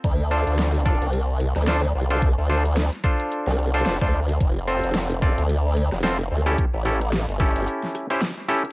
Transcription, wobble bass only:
X:1
M:4/4
L:1/16
Q:"Swing 16ths" 1/4=110
K:F
V:1 name="Wobble bass" clef=bass
D,,3 D,,4 C,,4 D,,3 C,,2- | C,, D,,4 z4 C,,3 F,,, D,,3 | F,,,3 F,,,4 D,,4 F,,,3 D,,2 | z A,,,4 G,,,2 G,,, z8 |]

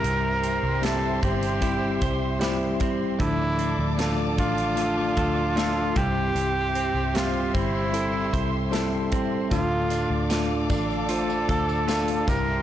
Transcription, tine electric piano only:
X:1
M:4/4
L:1/8
Q:1/4=76
K:Dm
V:1 name="Tine electric piano"
[G,CEG]2 [G,CEG]2 [G,CEG]2 [G,CEG]2 | [F,A,DA]2 [A,DFA]2 [A,DFA]2 [A,DFA] [G,CEG]- | [G,CEG]2 [G,CGe]2 [G,CEA]2 [G,CEA]2 | [A,DFA]2 [A,DFA]2 [A,DFc]2 [A,DFA] [G,CEG] |]
V:2 name="Tine electric piano" clef=bass
G,,2 z6 | A,,3 z4 G,,- | G,,2 z6 | A,,3 z4 G,, |]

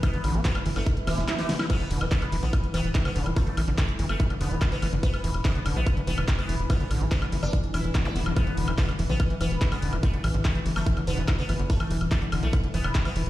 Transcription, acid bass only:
X:1
M:4/4
L:1/16
Q:1/4=144
K:Ephr
V:1 name="Acid bass" clef=bass
E, D, D, B, F D, E, D, z2 E, z E z D, E | E, D, D, F, F D, E, D, z2 E, z E, D, D, F, | F D, E, D, z2 E, z E, D, D, F, F D, E, D, | z2 E, z E, D, D, F, F D, E, D, z2 E, z |
E, D, D, F, F D, E, D, z2 E, z B, z B, F, | E, D, D, F, F D, E, D, z E, E, z E, D, D, F, | F D, E, D, z E, E, z E, D, D, F, F D, E, D, | z E, E, z E, D, D, F, F D, E, D, z E, E, z |]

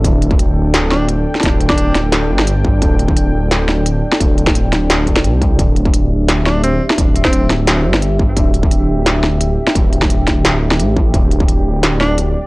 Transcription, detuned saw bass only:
X:1
M:4/4
L:1/8
Q:1/4=173
K:Cmix
V:1 name="Detuned saw bass" clef=bass
D,,,6- D,,, z | D,,,4 D,,, G,,,3 | D,,,6- D,,, z | D,,,6 C,,2 |
D,,,6- D,,, z | D,,,4 D,,, G,,,3 | D,,,6- D,,, z | D,,,6 A,,,2 |
D,,,6- D,,, z |]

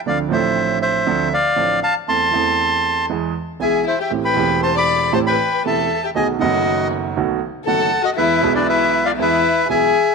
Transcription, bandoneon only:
X:1
M:4/4
L:1/16
Q:1/4=118
K:Am
V:1 name="Bandoneon"
[df]2 [ce]4 [ce]4 [df]4 [fa]2 | [ac']8 z4 [e^g]2 [ce] [e=g]- | [eg] [gb]3 [ac'] [bd']3 [ac'] [gb]3 [ea]3 [eg] | [^d^g]2 [d^f]4 z6 [fa]3 [df] |
[Be]3 [Bd] [Be]3 [df] [Be]4 [e^g]4 |]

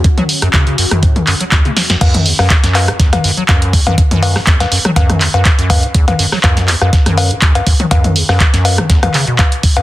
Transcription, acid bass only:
X:1
M:4/4
L:1/16
Q:"Swing 16ths" 1/4=122
K:F#m
V:1 name="Acid bass" clef=bass
F,, F, z F,, C, C, F,, F,, A,, E,, F,, F, E,, C, z F,, | F,,2 E,, F,, z F,,2 A,, E,, F,, F,, F, F,,2 E,, F,, | F,, F,,2 A,, E,, F,, F,, F, F,,2 E,, F,, F,, F,,2 A,, | E,, F,, F,, F, F,,2 E,, F,, z F,,2 A,, E,, F,, F,, F, |
F,,2 E,, F,, z F,,2 A,, E,, F,, C, B,, F,, z2 F,, |]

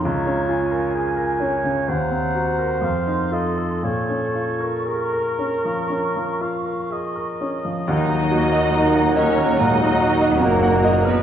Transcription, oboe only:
X:1
M:4/4
L:1/8
Q:1/4=64
K:Bbm
V:1 name="Oboe"
d2 a2 g2 f e | d2 B3 f e2 | [K:Ebm] g8 |]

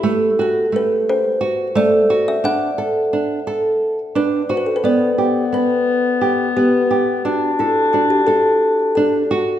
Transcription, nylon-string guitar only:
X:1
M:7/8
L:1/8
Q:1/4=87
K:Dmix
V:1 name="Nylon-string guitar"
A, F A,2 F A, F | D A D A2 D F | B, G B,2 G B, G | D A D A2 D F |]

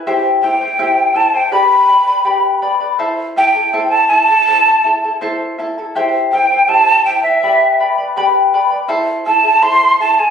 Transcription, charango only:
X:1
M:2/4
L:1/16
Q:1/4=81
K:Am
V:1 name="Charango"
[EGceg]2 [Eceg] [Ecg] [EGceg]2 [Eceg] [Ecg] | [GBdgb]2 [Bdgb] [Bdb] [GBdgb]2 [Bdgb] [Bdb] | [EAcea]2 [EAea] [EAa] [EAcea]2 [EAea] [EAa] | [EAcea]2 [EAea] [EAa] [EAcea]2 [EAea] [EAa] |
[EGceg]2 [Eceg] [Ecg] [EGceg]2 [Eceg] [Ecg] | [GBdgb]2 [Bdgb] [Bdb] [GBdgb]2 [Bdgb] [Bdb] | [EAcea]2 [EAea] [EAa] [EAcea]2 [EAea] [EAa] |]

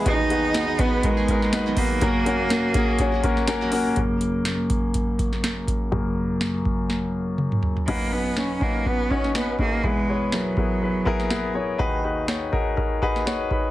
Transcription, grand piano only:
X:1
M:4/4
L:1/8
Q:"Swing 16ths" 1/4=123
K:F#mix
V:1 name="Grand piano"
[B,DFG] [B,DFG] [B,DFB] [B,DFB] [B,DFA] [B,DFA] [B,DFB] [B,DFB] | [A,CFA] [A,CFc] [A,CFA] [A,CFG] [A,CFc] [A,CFA] [A,CFA] [A,CFA] | z8 | z8 |
[CDFB] [CDFB] [CDFB] [CDFB] [CDFB] [CDFc] [CDFB] [CDFG] | [B,EGB] [B,EGc] [B,EGA] [B,EGA] [B,EGB] [B,EGA] [B,EGA] [B,EGc] | [DFGB] [DFGB] [DFGc] [DFGA] [DFGA] [DFGB] [DFGc] [DFGB] |]
V:2 name="Grand piano" clef=bass
[D,,D,]8 | [F,,C,]8 | [F,,C,A,] z6 z | [F,,C,A,]8 |
[B,,,F,,]8 | [E,,B,,]8 | [D,,D,]8 |]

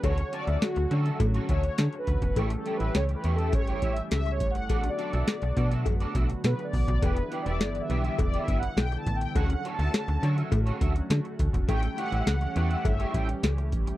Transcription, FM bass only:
X:1
M:4/4
L:1/16
Q:1/4=103
K:D
V:1 name="FM bass" clef=bass
D,,2 z D,, z D,, D,2 A,,2 D,,2 D, z D,, E,,, | A,,,2 z A,,, C,,2 E,,2 G,,,2 A,,,2 C,,2 F,,,2 | B,,,2 z B,,, z B,,, B,,2 F,,2 B,,,2 B,, z B,,, B,,, | E,,,2 z E,,, G,,,2 B,,,2 E,,,2 G,,,2 B,,,2 A,,,2 |
D,,2 z D,, z D,, D,2 A,,2 D,,2 D, z D,, E,,, | A,,,2 z A,,, C,,2 E,,2 G,,,2 A,,,2 C,,2 F,,,2 |]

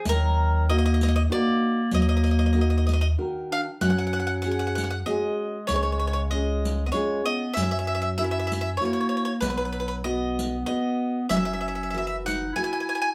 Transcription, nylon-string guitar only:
X:1
M:3/4
L:1/8
Q:"Swing" 1/4=96
K:Ebm
V:1 name="Nylon-string guitar"
E,2 [EGB]2 [EGB]2 | G,2 [EGB]2 [E,GB]2 | [K:F#] F,2 [CFG]2 [CFG]2 | C,2 [CEG]2 [CEG]2 |
F,2 [=EFA]2 [EFA]2 | B,2 [FBd]2 [FBd]2 | F,2 [=E,FA]2 [=EFA]2 |]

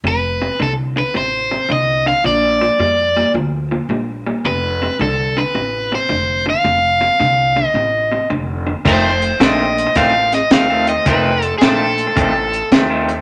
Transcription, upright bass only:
X:1
M:4/4
L:1/8
Q:"Swing" 1/4=109
K:Fmix
V:1 name="Upright bass" clef=bass
F,,,2 C,,2 A,,,2 C,,2 | B,,,2 F,,2 D,,2 B,,,2 | F,,,2 C,,2 A,,,2 F,,,2 | F,,,2 C,,2 A,,,2 F,,,2 |
F,,,2 B,,,2 A,,,2 E,,2 | F,,,2 B,,,2 A,,,2 E,,2 |]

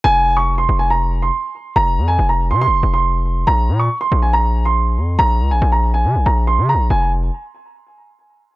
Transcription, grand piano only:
X:1
M:4/4
L:1/16
Q:1/4=140
K:Fm
V:1 name="Grand piano"
a3 d'2 c'2 a b3 c'4- c' | b3 a2 b2 c' c'3 c'4- c' | b3 d'2 c'2 a b3 c'4- c' | b3 a2 b2 a3 b2 c'2 b2 |
a2 z12 z2 |]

